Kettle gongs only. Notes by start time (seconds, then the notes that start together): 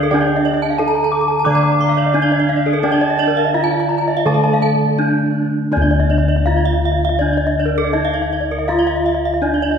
Already playing: D3
0.12 D4
0.79 D#4
1.47 D3
2.15 D#4
2.84 D4
3.56 D#4
4.26 D3
4.99 D#4
5.72 D4
5.77 D2
6.46 D#4
7.95 D#4
8.70 F4
9.44 D#4